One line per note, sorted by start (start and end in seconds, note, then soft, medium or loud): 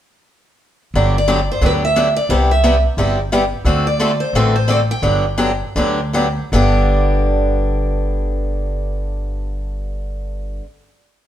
0.94 1.48 G1 medium
0.94 1.15 D3 medium
0.94 1.15 F#3 medium
0.94 1.15 B3 medium
0.94 1.16 D4 medium
0.94 1.16 G4 medium
1.18 1.51 D5 medium
1.28 1.39 D3 medium
1.28 1.39 F#3 medium
1.28 1.39 B3 medium
1.28 1.39 D4 medium
1.28 1.39 G4 medium
1.52 1.64 C5 medium
1.61 2.16 D2 medium
1.61 1.82 D3 medium
1.61 1.82 F#3 medium
1.61 1.82 B3 medium
1.61 1.83 D4 medium
1.61 1.83 G4 medium
1.66 1.71 B4 medium
1.85 2.16 E5 medium
1.96 2.07 D3 medium
1.96 2.07 F#3 medium
1.96 2.07 B3 medium
1.96 2.07 D4 medium
1.96 2.07 G4 medium
2.16 2.30 D5 medium
2.29 2.84 C2 medium
2.29 2.50 C3 medium
2.29 2.50 G3 medium
2.29 2.50 B3 medium
2.29 2.50 E4 medium
2.29 2.51 G4 medium
2.29 2.35 C5 medium
2.51 2.82 E5 medium
2.64 2.74 C3 medium
2.64 2.74 G3 medium
2.64 2.75 B3 medium
2.64 2.75 E4 medium
2.64 2.75 G4 medium
2.97 3.51 G1 medium
2.97 3.18 C3 medium
2.97 3.18 G3 medium
2.97 3.18 B3 medium
2.97 3.18 E4 medium
2.97 3.18 G4 medium
3.32 3.42 C3 medium
3.32 3.43 G3 medium
3.32 3.43 B3 medium
3.32 3.43 E4 medium
3.32 3.43 G4 medium
3.64 4.19 D2 medium
3.64 3.85 D3 medium
3.64 3.86 A3 medium
3.64 3.86 C4 medium
3.64 3.86 F#4 medium
3.64 3.86 A4 medium
3.87 4.18 D5 medium
4.00 4.10 D3 medium
4.00 4.10 A3 medium
4.00 4.10 C4 medium
4.00 4.11 F#4 medium
4.00 4.11 A4 medium
4.20 4.34 C5 medium
4.33 4.89 A1 medium
4.33 4.55 D3 medium
4.33 4.55 A3 medium
4.33 4.55 C4 medium
4.33 4.55 F#4 medium
4.33 4.55 A4 medium
4.33 4.55 B4 medium
4.56 4.69 C5 medium
4.68 4.79 D3 medium
4.68 4.79 A3 medium
4.68 4.79 C4 medium
4.68 4.79 F#4 medium
4.68 4.80 A4 medium
4.68 4.76 D5 medium
4.91 6.11 G5 medium
5.02 5.61 G1 medium
5.02 5.24 D3 medium
5.02 5.25 F#3 medium
5.02 5.24 B3 medium
5.02 5.25 D4 medium
5.02 5.25 G4 medium
5.38 5.50 D3 medium
5.38 5.50 F#3 medium
5.38 5.50 B3 medium
5.38 5.50 D4 medium
5.38 5.51 G4 medium
5.76 6.37 D2 medium
5.76 5.99 D3 medium
5.76 5.99 F#3 medium
5.76 5.99 B3 medium
5.76 5.99 D4 medium
5.76 5.99 G4 medium
6.13 6.26 D3 medium
6.13 6.27 F#3 medium
6.13 6.26 B3 medium
6.13 6.27 D4 medium
6.13 6.27 G4 medium
6.52 10.58 G1 medium
6.52 10.63 G2 medium
6.52 10.63 D3 medium
6.52 10.64 B3 medium
6.52 10.64 D4 medium
6.52 10.65 G4 medium